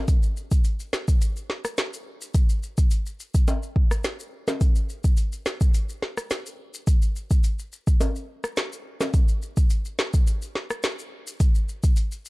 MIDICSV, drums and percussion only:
0, 0, Header, 1, 2, 480
1, 0, Start_track
1, 0, Tempo, 566038
1, 68, Time_signature, 4, 2, 24, 8
1, 10423, End_track
2, 0, Start_track
2, 0, Title_t, "Drums"
2, 67, Note_on_c, 9, 82, 75
2, 68, Note_on_c, 9, 36, 119
2, 68, Note_on_c, 9, 42, 83
2, 152, Note_off_c, 9, 82, 0
2, 153, Note_off_c, 9, 36, 0
2, 153, Note_off_c, 9, 42, 0
2, 192, Note_on_c, 9, 82, 52
2, 277, Note_off_c, 9, 82, 0
2, 311, Note_on_c, 9, 82, 52
2, 396, Note_off_c, 9, 82, 0
2, 434, Note_on_c, 9, 82, 74
2, 437, Note_on_c, 9, 36, 94
2, 519, Note_off_c, 9, 82, 0
2, 521, Note_off_c, 9, 36, 0
2, 544, Note_on_c, 9, 82, 62
2, 549, Note_on_c, 9, 42, 74
2, 629, Note_off_c, 9, 82, 0
2, 634, Note_off_c, 9, 42, 0
2, 676, Note_on_c, 9, 82, 50
2, 760, Note_off_c, 9, 82, 0
2, 789, Note_on_c, 9, 38, 116
2, 791, Note_on_c, 9, 82, 56
2, 874, Note_off_c, 9, 38, 0
2, 876, Note_off_c, 9, 82, 0
2, 916, Note_on_c, 9, 36, 95
2, 916, Note_on_c, 9, 82, 69
2, 1000, Note_off_c, 9, 82, 0
2, 1001, Note_off_c, 9, 36, 0
2, 1029, Note_on_c, 9, 82, 78
2, 1031, Note_on_c, 9, 42, 73
2, 1114, Note_off_c, 9, 82, 0
2, 1115, Note_off_c, 9, 42, 0
2, 1156, Note_on_c, 9, 82, 46
2, 1241, Note_off_c, 9, 82, 0
2, 1269, Note_on_c, 9, 38, 65
2, 1354, Note_off_c, 9, 38, 0
2, 1396, Note_on_c, 9, 82, 61
2, 1397, Note_on_c, 9, 37, 92
2, 1481, Note_off_c, 9, 37, 0
2, 1481, Note_off_c, 9, 82, 0
2, 1505, Note_on_c, 9, 82, 64
2, 1510, Note_on_c, 9, 38, 111
2, 1510, Note_on_c, 9, 42, 82
2, 1590, Note_off_c, 9, 82, 0
2, 1595, Note_off_c, 9, 38, 0
2, 1595, Note_off_c, 9, 42, 0
2, 1639, Note_on_c, 9, 82, 58
2, 1724, Note_off_c, 9, 82, 0
2, 1877, Note_on_c, 9, 82, 79
2, 1962, Note_off_c, 9, 82, 0
2, 1987, Note_on_c, 9, 82, 76
2, 1988, Note_on_c, 9, 36, 119
2, 1988, Note_on_c, 9, 42, 86
2, 2072, Note_off_c, 9, 82, 0
2, 2073, Note_off_c, 9, 36, 0
2, 2073, Note_off_c, 9, 42, 0
2, 2113, Note_on_c, 9, 82, 51
2, 2197, Note_off_c, 9, 82, 0
2, 2230, Note_on_c, 9, 82, 52
2, 2315, Note_off_c, 9, 82, 0
2, 2354, Note_on_c, 9, 82, 77
2, 2357, Note_on_c, 9, 36, 95
2, 2439, Note_off_c, 9, 82, 0
2, 2441, Note_off_c, 9, 36, 0
2, 2465, Note_on_c, 9, 82, 62
2, 2470, Note_on_c, 9, 42, 76
2, 2550, Note_off_c, 9, 82, 0
2, 2554, Note_off_c, 9, 42, 0
2, 2596, Note_on_c, 9, 82, 49
2, 2681, Note_off_c, 9, 82, 0
2, 2711, Note_on_c, 9, 82, 52
2, 2796, Note_off_c, 9, 82, 0
2, 2836, Note_on_c, 9, 36, 97
2, 2836, Note_on_c, 9, 82, 74
2, 2920, Note_off_c, 9, 82, 0
2, 2921, Note_off_c, 9, 36, 0
2, 2949, Note_on_c, 9, 65, 76
2, 2949, Note_on_c, 9, 82, 74
2, 2950, Note_on_c, 9, 42, 71
2, 3034, Note_off_c, 9, 65, 0
2, 3034, Note_off_c, 9, 82, 0
2, 3035, Note_off_c, 9, 42, 0
2, 3076, Note_on_c, 9, 82, 47
2, 3160, Note_off_c, 9, 82, 0
2, 3187, Note_on_c, 9, 36, 92
2, 3272, Note_off_c, 9, 36, 0
2, 3316, Note_on_c, 9, 82, 59
2, 3317, Note_on_c, 9, 37, 94
2, 3401, Note_off_c, 9, 37, 0
2, 3401, Note_off_c, 9, 82, 0
2, 3424, Note_on_c, 9, 82, 65
2, 3430, Note_on_c, 9, 38, 110
2, 3430, Note_on_c, 9, 42, 80
2, 3509, Note_off_c, 9, 82, 0
2, 3515, Note_off_c, 9, 38, 0
2, 3515, Note_off_c, 9, 42, 0
2, 3559, Note_on_c, 9, 82, 58
2, 3643, Note_off_c, 9, 82, 0
2, 3796, Note_on_c, 9, 65, 77
2, 3796, Note_on_c, 9, 82, 77
2, 3798, Note_on_c, 9, 38, 71
2, 3881, Note_off_c, 9, 65, 0
2, 3881, Note_off_c, 9, 82, 0
2, 3883, Note_off_c, 9, 38, 0
2, 3906, Note_on_c, 9, 82, 76
2, 3908, Note_on_c, 9, 36, 119
2, 3908, Note_on_c, 9, 42, 81
2, 3991, Note_off_c, 9, 82, 0
2, 3993, Note_off_c, 9, 36, 0
2, 3993, Note_off_c, 9, 42, 0
2, 4031, Note_on_c, 9, 82, 52
2, 4116, Note_off_c, 9, 82, 0
2, 4150, Note_on_c, 9, 82, 51
2, 4235, Note_off_c, 9, 82, 0
2, 4273, Note_on_c, 9, 82, 76
2, 4276, Note_on_c, 9, 36, 90
2, 4358, Note_off_c, 9, 82, 0
2, 4361, Note_off_c, 9, 36, 0
2, 4383, Note_on_c, 9, 82, 62
2, 4390, Note_on_c, 9, 42, 76
2, 4468, Note_off_c, 9, 82, 0
2, 4475, Note_off_c, 9, 42, 0
2, 4514, Note_on_c, 9, 82, 49
2, 4599, Note_off_c, 9, 82, 0
2, 4629, Note_on_c, 9, 38, 119
2, 4630, Note_on_c, 9, 82, 53
2, 4714, Note_off_c, 9, 38, 0
2, 4714, Note_off_c, 9, 82, 0
2, 4754, Note_on_c, 9, 82, 76
2, 4756, Note_on_c, 9, 36, 98
2, 4839, Note_off_c, 9, 82, 0
2, 4841, Note_off_c, 9, 36, 0
2, 4869, Note_on_c, 9, 82, 76
2, 4870, Note_on_c, 9, 42, 74
2, 4954, Note_off_c, 9, 82, 0
2, 4955, Note_off_c, 9, 42, 0
2, 4996, Note_on_c, 9, 82, 48
2, 5081, Note_off_c, 9, 82, 0
2, 5109, Note_on_c, 9, 38, 68
2, 5194, Note_off_c, 9, 38, 0
2, 5236, Note_on_c, 9, 37, 94
2, 5236, Note_on_c, 9, 82, 60
2, 5321, Note_off_c, 9, 37, 0
2, 5321, Note_off_c, 9, 82, 0
2, 5345, Note_on_c, 9, 82, 67
2, 5349, Note_on_c, 9, 38, 112
2, 5349, Note_on_c, 9, 42, 82
2, 5430, Note_off_c, 9, 82, 0
2, 5434, Note_off_c, 9, 38, 0
2, 5434, Note_off_c, 9, 42, 0
2, 5479, Note_on_c, 9, 82, 55
2, 5563, Note_off_c, 9, 82, 0
2, 5717, Note_on_c, 9, 82, 77
2, 5801, Note_off_c, 9, 82, 0
2, 5827, Note_on_c, 9, 82, 74
2, 5828, Note_on_c, 9, 36, 118
2, 5828, Note_on_c, 9, 42, 85
2, 5912, Note_off_c, 9, 82, 0
2, 5913, Note_off_c, 9, 36, 0
2, 5913, Note_off_c, 9, 42, 0
2, 5952, Note_on_c, 9, 82, 50
2, 6037, Note_off_c, 9, 82, 0
2, 6070, Note_on_c, 9, 82, 51
2, 6155, Note_off_c, 9, 82, 0
2, 6194, Note_on_c, 9, 82, 75
2, 6196, Note_on_c, 9, 36, 97
2, 6279, Note_off_c, 9, 82, 0
2, 6281, Note_off_c, 9, 36, 0
2, 6305, Note_on_c, 9, 82, 62
2, 6309, Note_on_c, 9, 42, 76
2, 6390, Note_off_c, 9, 82, 0
2, 6394, Note_off_c, 9, 42, 0
2, 6436, Note_on_c, 9, 82, 50
2, 6521, Note_off_c, 9, 82, 0
2, 6551, Note_on_c, 9, 82, 54
2, 6635, Note_off_c, 9, 82, 0
2, 6675, Note_on_c, 9, 82, 71
2, 6676, Note_on_c, 9, 36, 96
2, 6760, Note_off_c, 9, 82, 0
2, 6761, Note_off_c, 9, 36, 0
2, 6789, Note_on_c, 9, 65, 77
2, 6789, Note_on_c, 9, 82, 75
2, 6790, Note_on_c, 9, 42, 75
2, 6874, Note_off_c, 9, 65, 0
2, 6874, Note_off_c, 9, 82, 0
2, 6875, Note_off_c, 9, 42, 0
2, 6916, Note_on_c, 9, 82, 48
2, 7001, Note_off_c, 9, 82, 0
2, 7156, Note_on_c, 9, 37, 94
2, 7156, Note_on_c, 9, 82, 57
2, 7241, Note_off_c, 9, 37, 0
2, 7241, Note_off_c, 9, 82, 0
2, 7265, Note_on_c, 9, 82, 67
2, 7269, Note_on_c, 9, 38, 107
2, 7269, Note_on_c, 9, 42, 84
2, 7349, Note_off_c, 9, 82, 0
2, 7354, Note_off_c, 9, 38, 0
2, 7354, Note_off_c, 9, 42, 0
2, 7399, Note_on_c, 9, 82, 57
2, 7484, Note_off_c, 9, 82, 0
2, 7637, Note_on_c, 9, 65, 79
2, 7637, Note_on_c, 9, 82, 76
2, 7639, Note_on_c, 9, 38, 68
2, 7722, Note_off_c, 9, 65, 0
2, 7722, Note_off_c, 9, 82, 0
2, 7723, Note_off_c, 9, 38, 0
2, 7747, Note_on_c, 9, 82, 77
2, 7748, Note_on_c, 9, 36, 123
2, 7748, Note_on_c, 9, 42, 86
2, 7832, Note_off_c, 9, 82, 0
2, 7833, Note_off_c, 9, 36, 0
2, 7833, Note_off_c, 9, 42, 0
2, 7871, Note_on_c, 9, 82, 51
2, 7956, Note_off_c, 9, 82, 0
2, 7990, Note_on_c, 9, 82, 53
2, 8075, Note_off_c, 9, 82, 0
2, 8113, Note_on_c, 9, 82, 75
2, 8117, Note_on_c, 9, 36, 92
2, 8197, Note_off_c, 9, 82, 0
2, 8201, Note_off_c, 9, 36, 0
2, 8224, Note_on_c, 9, 82, 65
2, 8230, Note_on_c, 9, 42, 75
2, 8309, Note_off_c, 9, 82, 0
2, 8315, Note_off_c, 9, 42, 0
2, 8355, Note_on_c, 9, 82, 51
2, 8440, Note_off_c, 9, 82, 0
2, 8469, Note_on_c, 9, 38, 109
2, 8470, Note_on_c, 9, 82, 51
2, 8554, Note_off_c, 9, 38, 0
2, 8555, Note_off_c, 9, 82, 0
2, 8594, Note_on_c, 9, 82, 74
2, 8596, Note_on_c, 9, 36, 96
2, 8679, Note_off_c, 9, 82, 0
2, 8681, Note_off_c, 9, 36, 0
2, 8709, Note_on_c, 9, 82, 77
2, 8712, Note_on_c, 9, 42, 74
2, 8794, Note_off_c, 9, 82, 0
2, 8796, Note_off_c, 9, 42, 0
2, 8835, Note_on_c, 9, 82, 48
2, 8920, Note_off_c, 9, 82, 0
2, 8950, Note_on_c, 9, 38, 65
2, 9035, Note_off_c, 9, 38, 0
2, 9076, Note_on_c, 9, 82, 59
2, 9077, Note_on_c, 9, 37, 96
2, 9161, Note_off_c, 9, 82, 0
2, 9162, Note_off_c, 9, 37, 0
2, 9185, Note_on_c, 9, 82, 67
2, 9190, Note_on_c, 9, 38, 108
2, 9190, Note_on_c, 9, 42, 81
2, 9270, Note_off_c, 9, 82, 0
2, 9275, Note_off_c, 9, 38, 0
2, 9275, Note_off_c, 9, 42, 0
2, 9318, Note_on_c, 9, 82, 55
2, 9403, Note_off_c, 9, 82, 0
2, 9556, Note_on_c, 9, 82, 78
2, 9641, Note_off_c, 9, 82, 0
2, 9668, Note_on_c, 9, 36, 118
2, 9668, Note_on_c, 9, 42, 80
2, 9668, Note_on_c, 9, 82, 78
2, 9753, Note_off_c, 9, 36, 0
2, 9753, Note_off_c, 9, 42, 0
2, 9753, Note_off_c, 9, 82, 0
2, 9793, Note_on_c, 9, 82, 50
2, 9878, Note_off_c, 9, 82, 0
2, 9910, Note_on_c, 9, 82, 52
2, 9995, Note_off_c, 9, 82, 0
2, 10034, Note_on_c, 9, 82, 75
2, 10037, Note_on_c, 9, 36, 93
2, 10118, Note_off_c, 9, 82, 0
2, 10121, Note_off_c, 9, 36, 0
2, 10144, Note_on_c, 9, 82, 61
2, 10149, Note_on_c, 9, 42, 77
2, 10229, Note_off_c, 9, 82, 0
2, 10234, Note_off_c, 9, 42, 0
2, 10275, Note_on_c, 9, 82, 49
2, 10360, Note_off_c, 9, 82, 0
2, 10390, Note_on_c, 9, 82, 54
2, 10423, Note_off_c, 9, 82, 0
2, 10423, End_track
0, 0, End_of_file